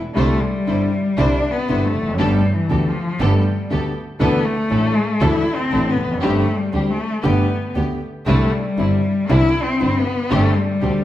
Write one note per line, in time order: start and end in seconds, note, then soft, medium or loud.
0.15 0.37 C2 medium
0.15 0.38 C2 medium
0.15 0.37 C3 medium
0.15 0.37 D3 medium
0.15 0.37 G3 medium
0.15 0.42 A3 medium
0.15 0.37 C4 medium
0.15 0.37 D4 medium
0.15 0.37 E4 medium
0.15 0.38 E4 medium
0.15 0.38 C5 medium
0.40 1.19 G3 medium
0.67 0.88 G1 medium
0.67 0.89 G1 medium
0.67 0.89 G2 medium
0.67 0.88 D3 soft
0.67 0.88 G3 soft
0.67 0.89 C4 soft
0.67 0.88 D4 soft
0.67 0.89 E4 soft
0.67 0.89 E4 medium
0.67 0.89 C5 soft
1.17 1.39 C2 medium
1.17 1.39 C3 medium
1.17 1.39 D3 medium
1.17 1.39 G3 medium
1.17 1.39 C4 medium
1.17 1.53 D4 medium
1.17 1.39 D4 medium
1.17 1.39 E4 medium
1.17 1.39 C5 medium
1.51 1.87 B3 medium
1.68 1.90 G1 medium
1.68 1.90 G1 soft
1.68 1.90 G2 medium
1.68 1.90 D3 soft
1.68 1.90 G3 soft
1.68 1.90 C4 soft
1.68 1.90 D4 soft
1.68 1.90 E4 soft
1.68 1.90 C5 medium
1.85 2.19 A3 medium
1.95 2.19 F1 soft
2.01 2.07 E2 soft
2.08 2.14 F2 medium
2.14 2.20 F#2 medium
2.18 2.40 G1 medium
2.18 2.40 G2 medium
2.18 2.40 D3 medium
2.18 2.55 G3 medium
2.18 2.40 A3 medium
2.18 2.40 B3 medium
2.18 2.40 G4 medium
2.18 2.40 A4 medium
2.53 2.90 E3 medium
2.69 2.91 D2 medium
2.69 2.91 D3 medium
2.69 2.91 A3 soft
2.69 2.90 B3 soft
2.69 2.91 B3 soft
2.69 2.90 G4 soft
2.69 2.91 G4 soft
2.69 2.91 A4 soft
2.88 3.26 F3 medium
3.19 3.41 G1 medium
3.19 3.41 G2 medium
3.19 3.41 D3 medium
3.19 3.41 A3 medium
3.19 3.41 B3 medium
3.19 3.41 G4 medium
3.19 3.41 A4 medium
3.25 3.72 G3 medium
3.70 3.92 D2 soft
3.70 3.92 D2 medium
3.70 3.91 D3 medium
3.70 3.91 A3 soft
3.70 3.91 B3 soft
3.70 3.92 B3 soft
3.70 3.92 G4 soft
3.70 3.92 A4 medium
4.19 4.41 D2 medium
4.19 4.42 D2 medium
4.19 4.41 D3 medium
4.19 4.41 E3 medium
4.19 4.41 A3 medium
4.19 4.47 B3 medium
4.19 4.41 D4 medium
4.19 4.42 D4 medium
4.19 4.42 E4 medium
4.19 4.41 A4 medium
4.19 4.42 A4 medium
4.45 5.23 A3 medium
4.70 4.92 A1 medium
4.70 4.92 A2 medium
4.70 4.91 E3 soft
4.70 4.92 A3 soft
4.70 4.91 D4 soft
4.70 4.92 D4 soft
4.70 4.92 E4 soft
4.70 4.92 A4 medium
5.21 5.43 D2 loud
5.21 5.43 D2 medium
5.21 5.42 D3 medium
5.21 5.42 E3 medium
5.21 5.42 A3 medium
5.21 5.42 D4 medium
5.21 5.43 D4 medium
5.21 5.42 E4 medium
5.21 5.56 E4 medium
5.21 5.42 A4 medium
5.21 5.43 A4 medium
5.55 5.91 C4 medium
5.71 5.93 A1 medium
5.71 5.93 A1 soft
5.71 5.94 A2 soft
5.71 5.93 E3 soft
5.71 5.94 A3 soft
5.71 5.93 D4 soft
5.71 5.94 D4 soft
5.71 5.93 E4 soft
5.71 5.93 A4 medium
5.71 5.94 A4 soft
5.90 6.23 B3 medium
5.98 6.22 F1 medium
6.04 6.10 E2 soft
6.11 6.17 F2 medium
6.17 6.23 F#2 medium
6.22 6.44 G1 medium
6.22 6.44 G2 medium
6.22 6.44 D3 medium
6.22 6.44 G3 medium
6.22 6.58 A3 medium
6.22 6.43 C4 medium
6.22 6.44 C4 medium
6.22 6.43 D4 medium
6.22 6.43 G4 medium
6.22 6.44 G4 medium
6.57 6.92 G3 medium
6.73 6.95 D2 medium
6.73 6.95 D2 soft
6.73 6.95 D3 medium
6.73 6.95 G3 soft
6.73 6.95 C4 soft
6.73 6.95 D4 soft
6.73 6.95 G4 soft
6.90 7.24 A3 medium
7.23 7.46 G1 medium
7.23 7.45 G2 medium
7.23 7.46 D3 medium
7.23 7.45 A3 medium
7.23 7.45 B3 medium
7.23 7.46 B3 medium
7.23 7.72 B3 medium
7.23 7.45 G4 medium
7.23 7.46 G4 medium
7.75 7.97 D2 medium
7.75 7.98 D2 soft
7.75 7.97 D3 soft
7.75 7.97 A3 soft
7.75 7.97 B3 soft
7.75 7.98 B3 soft
7.75 7.97 G4 soft
7.75 7.98 G4 soft
8.27 8.48 C2 medium
8.27 8.49 C2 medium
8.27 8.49 C3 medium
8.27 8.49 D3 medium
8.27 8.49 G3 medium
8.27 8.54 A3 medium
8.27 8.49 C4 medium
8.27 8.49 D4 medium
8.27 8.49 E4 medium
8.52 9.32 G3 medium
8.77 9.00 G1 medium
8.77 9.00 G2 medium
8.77 9.00 D3 soft
8.77 9.00 G3 soft
8.77 8.99 C4 soft
8.77 9.00 C4 soft
8.77 9.00 D4 soft
8.77 9.00 E4 soft
8.77 9.00 E4 medium
9.29 9.51 C2 medium
9.29 9.51 C3 medium
9.29 9.51 D3 medium
9.29 9.51 G3 medium
9.29 9.51 C4 medium
9.29 9.51 D4 medium
9.29 9.51 E4 medium
9.29 9.52 E4 medium
9.29 9.64 E4 loud
9.63 9.99 C4 medium
9.80 10.02 G1 medium
9.80 10.02 G2 medium
9.80 10.02 D3 soft
9.80 10.02 G3 soft
9.80 10.02 C4 soft
9.80 10.02 D4 soft
9.80 10.02 E4 medium
9.80 10.02 E4 soft
9.97 10.32 B3 medium
10.30 10.53 G1 medium
10.30 10.53 G2 medium
10.30 10.52 D3 medium
10.30 10.52 G3 medium
10.30 10.58 A3 medium
10.30 10.52 C4 medium
10.30 10.52 D4 medium
10.30 10.52 G4 medium
10.57 11.04 G3 medium
10.81 11.03 D2 medium
10.81 11.03 D3 medium
10.81 11.03 G3 soft
10.81 11.03 C4 soft
10.81 11.03 D4 soft
10.81 11.03 G4 soft
10.81 11.03 G4 medium